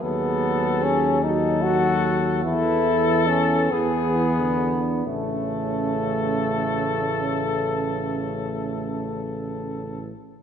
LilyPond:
<<
  \new Staff \with { instrumentName = "Cornet" } { \time 12/8 \key a \major \tempo 4. = 45 a'4. a'4. a'4. gis'4 r8 | a'1~ a'4. r8 | }
  \new Staff \with { instrumentName = "French horn section" } { \time 12/8 \key a \major gis'4. fis'4. a'4. gis'8 e'8 d'8 | cis'1~ cis'4~ cis'16 r8. | }
  \new Staff \with { instrumentName = "Euphonium" } { \time 12/8 \key a \major b4 cis'8 dis'8 fis'4 e'4 cis'8 b4. | a1~ a8 r4. | }
  \new Staff \with { instrumentName = "Euphonium" } { \clef bass \time 12/8 \key a \major fis4. fis4. e4. e8. d8 r16 | cis1~ cis4. r8 | }
  \new Staff \with { instrumentName = "Tuba" } { \clef bass \time 12/8 \key a \major dis,2. e,4. e,4. | a,,1~ a,,4. r8 | }
>>